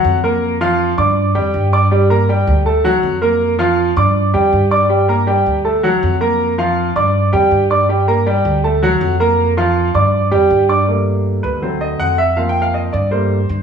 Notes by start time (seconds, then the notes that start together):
Already playing: F#3 F#4 F#5
0.04 F2
0.24 A#3 A#4 A#5
0.61 F3 F4 F5
0.97 G2 D4 D5 D6
1.35 F2 G3 G4 G5
1.54 G2
1.73 D4 D5 D6
1.91 G3 G4 G5
2.10 A#3 A#4 A#5
2.29 G3 G4 G5
2.47 D2
2.65 A3 A4 A5
2.84 F#3 F#4 F#5
3.03 F2
3.22 A#3 A#4 A#5
3.59 F3 F4 F5
3.96 G2 D4 D5 D6
4.34 F2 G3 G4 G5
4.53 G2
4.71 D4 D5 D6
4.89 G3 G4 G5
5.08 A#3 A#4 A#5
5.27 G3 G4 G5
5.46 D2
5.64 A3 A4 A5
5.83 F#3 F#4 F#5
6.03 F2
6.21 A#3 A#4 A#5
6.58 F3 F4 F5
6.96 G2 D4 D5 D6
7.32 F2 G3 G4 G5
7.51 G2
7.70 D4 D5 D6
7.89 G3 G4 G5
8.08 A#3 A#4 A#5
8.27 G3 G4 G5
8.45 D2
8.64 A3 A4 A5
8.83 F#3 F#4 F#5
9.01 F2
9.20 A#3 A#4 A#5
9.57 F3 F4 F5
9.94 G2 D4 D5 D6
10.31 F2 G3 G4 G5
10.50 G2
10.69 D4 D5 D6
10.87 G3 A3 A#3
11.43 D2 B4
11.62 F#3 A3 C4 C5
11.81 D#5
12.00 F2 F#5
12.18 E5
12.36 F3 A#3 C4 F5
12.49 G5
12.62 F5
12.74 D#5
12.93 G2 D5
13.11 G3 A3 A#3 C5
13.49 G2